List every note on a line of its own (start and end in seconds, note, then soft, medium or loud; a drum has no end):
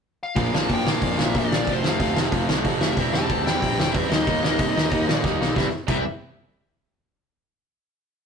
0.23 0.56 F5 loud
0.35 0.50 A#1 loud
0.35 0.54 A#2 medium
0.35 0.55 F3 loud
0.35 0.54 A#3 medium
0.35 0.53 D4 loud
0.35 0.53 F4 loud
0.35 kick loud
0.35 open hi-hat medium
0.53 0.66 A#1 medium
0.53 0.68 A#2 medium
0.53 0.70 F3 medium
0.53 0.69 A#3 medium
0.53 0.70 D4 medium
0.53 0.72 F4 medium
0.53 0.69 A5 loud
0.53 snare loud
0.69 0.83 G1 medium
0.69 0.88 A#2 medium
0.69 0.89 F3 loud
0.69 0.88 A#3 loud
0.69 0.87 D4 loud
0.69 0.87 F4 loud
0.69 kick loud
0.69 open hi-hat medium
0.73 0.88 G5 loud
0.85 0.99 A#2 medium
0.85 1.02 D4 medium
0.85 1.03 F4 loud
0.85 snare loud
0.89 1.01 A#2 medium
0.89 1.01 F3 medium
0.89 1.03 A#3 medium
0.89 1.19 F5 loud
1.02 1.15 F2 loud
1.02 1.20 A#2 medium
1.02 1.19 F3 medium
1.02 1.18 A#3 medium
1.02 1.18 D4 medium
1.02 1.17 F4 medium
1.02 kick loud
1.02 open hi-hat medium
1.18 1.32 A#1 medium
1.18 1.33 A#2 loud
1.18 1.34 F3 medium
1.18 1.35 A#3 medium
1.18 1.36 D4 loud
1.18 1.36 F4 loud
1.18 snare loud
1.24 1.37 E5 loud
1.34 1.48 A#1 medium
1.34 1.51 A#2 medium
1.34 1.51 F3 medium
1.34 1.51 A#3 medium
1.34 1.50 D4 medium
1.34 1.49 F4 loud
1.34 kick loud
1.34 open hi-hat medium
1.39 1.71 D5 medium
1.50 1.65 A#1 loud
1.50 1.67 A#2 medium
1.50 1.66 F3 medium
1.50 1.67 A#3 medium
1.50 1.67 D4 medium
1.50 1.66 F4 loud
1.50 snare loud
1.67 1.80 F1 loud
1.67 1.85 F2 medium
1.67 1.85 C3 loud
1.67 1.85 F3 medium
1.67 1.84 A3 loud
1.67 1.84 C4 loud
1.67 1.82 F4 loud
1.67 kick loud
1.67 open hi-hat medium
1.73 1.87 C5 medium
1.83 1.97 F1 loud
1.83 1.99 F2 medium
1.83 2.00 C3 medium
1.83 1.97 F3 medium
1.83 1.99 A3 medium
1.83 2.00 C4 medium
1.83 1.99 F4 loud
1.83 snare loud
1.89 2.17 F5 medium
1.99 2.13 D2 medium
1.99 2.18 F2 loud
1.99 2.17 C3 loud
1.99 2.16 F3 medium
1.99 2.15 A3 loud
1.99 2.13 C4 loud
1.99 2.13 F4 loud
1.99 kick loud
1.99 open hi-hat medium
2.14 2.29 F1 medium
2.14 2.32 F3 medium
2.14 2.33 A3 loud
2.14 2.33 C4 medium
2.14 2.33 F4 loud
2.14 snare loud
2.18 2.32 F2 medium
2.18 2.32 C3 medium
2.32 2.46 F1 medium
2.32 2.49 F2 medium
2.32 2.49 C3 medium
2.32 2.50 F3 medium
2.32 2.50 A3 medium
2.32 2.49 C4 loud
2.32 2.48 F4 medium
2.32 kick loud
2.32 open hi-hat medium
2.48 2.62 C2 medium
2.48 2.64 F2 medium
2.48 2.64 C3 medium
2.48 2.65 F3 medium
2.48 2.66 A3 medium
2.48 2.66 C4 loud
2.48 2.67 F4 loud
2.48 snare loud
2.64 2.78 F1 medium
2.64 2.83 F2 medium
2.64 2.83 C3 medium
2.64 2.83 F3 medium
2.64 2.82 A3 medium
2.64 2.82 C4 medium
2.64 kick loud
2.64 open hi-hat medium
2.68 2.81 F4 medium
2.80 2.94 F1 medium
2.80 2.98 C3 medium
2.80 2.98 F3 medium
2.80 2.98 A3 medium
2.80 2.98 C4 medium
2.80 2.97 F4 medium
2.80 3.15 E5 medium
2.80 snare loud
2.85 2.99 F2 medium
2.97 3.11 E1 loud
2.97 3.15 C3 medium
2.97 3.15 E3 medium
2.97 3.16 G3 medium
2.97 3.15 C4 loud
2.97 3.14 E4 loud
2.97 kick loud
2.97 open hi-hat medium
3.10 3.27 E1 medium
3.10 3.42 A5 loud
3.10 snare loud
3.15 3.30 C3 medium
3.15 3.29 E3 medium
3.15 3.31 G3 medium
3.15 3.30 C4 medium
3.15 3.31 E4 medium
3.29 3.43 D2 medium
3.29 3.47 C3 loud
3.29 3.47 E3 medium
3.29 3.47 G3 loud
3.29 3.46 C4 loud
3.29 3.45 E4 loud
3.29 kick loud
3.29 open hi-hat medium
3.46 3.59 E2 medium
3.46 3.62 C3 medium
3.46 3.63 E3 medium
3.46 3.65 G3 medium
3.46 3.65 C4 medium
3.46 3.64 E4 loud
3.46 3.92 G5 loud
3.46 snare loud
3.62 3.76 A#1 medium
3.62 3.79 C3 medium
3.62 3.80 E3 medium
3.62 3.80 G3 medium
3.62 3.78 C4 medium
3.62 kick loud
3.62 open hi-hat medium
3.66 3.78 E4 medium
3.78 3.91 E1 medium
3.78 3.93 C3 medium
3.78 3.94 E3 medium
3.78 3.95 G3 medium
3.78 3.95 C4 medium
3.78 3.96 E4 loud
3.78 snare loud
3.92 4.08 E2 medium
3.92 4.10 C3 medium
3.92 4.11 E3 medium
3.92 4.12 G3 medium
3.92 4.11 C4 medium
3.92 4.09 E5 medium
3.92 kick loud
3.92 open hi-hat medium
3.97 4.11 E4 loud
4.10 4.24 D#2 medium
4.10 4.29 D#3 loud
4.10 4.30 G3 loud
4.10 4.29 A#3 loud
4.10 4.28 D#4 loud
4.10 5.20 D#5 medium
4.10 snare loud
4.27 4.40 D#2 loud
4.27 4.45 D#3 medium
4.27 4.45 G3 medium
4.27 4.45 A#3 medium
4.27 4.46 D#4 medium
4.27 kick loud
4.27 open hi-hat medium
4.43 4.57 D#2 medium
4.43 4.61 D#3 medium
4.43 4.61 G3 medium
4.43 4.60 A#3 medium
4.43 snare loud
4.47 4.59 D#4 medium
4.59 4.73 C3 medium
4.59 4.75 D#3 medium
4.59 4.76 G3 medium
4.59 4.77 A#3 medium
4.59 4.78 D#4 loud
4.59 kick loud
4.59 open hi-hat medium
4.76 4.89 D#2 medium
4.76 4.94 D#3 medium
4.76 4.93 G3 medium
4.76 4.93 A#3 medium
4.76 4.91 D#4 medium
4.76 snare loud
4.91 5.05 D#2 medium
4.91 5.07 G3 medium
4.91 5.08 A#3 medium
4.91 5.09 D#4 medium
4.91 kick loud
4.91 open hi-hat medium
4.95 5.06 D#3 medium
5.08 5.22 A#2 medium
5.08 5.25 D#3 medium
5.08 5.25 G3 medium
5.08 5.24 A#3 loud
5.08 5.23 D#4 loud
5.08 snare loud
5.24 5.37 D#2 medium
5.24 5.39 D#3 medium
5.24 5.40 G3 medium
5.24 5.40 A#3 medium
5.24 5.41 D#4 medium
5.24 kick loud
5.24 snare medium
5.41 5.54 B1 medium
5.41 5.56 D#3 medium
5.41 5.56 G3 medium
5.41 5.56 A#3 medium
5.41 5.57 D#4 loud
5.41 snare medium
5.56 5.65 C2 loud
5.56 5.67 C3 medium
5.56 5.67 E3 loud
5.56 5.67 G3 medium
5.56 5.67 C4 loud
5.56 5.68 E4 loud
5.56 5.66 E5 medium
5.56 kick loud
5.56 snare medium
5.88 6.03 C2 medium
5.88 6.02 C3 medium
5.88 6.02 E3 medium
5.88 6.02 G3 medium
5.88 6.02 C4 medium
5.88 6.02 E4 loud
5.88 6.04 E5 medium
5.88 kick loud
5.88 crash medium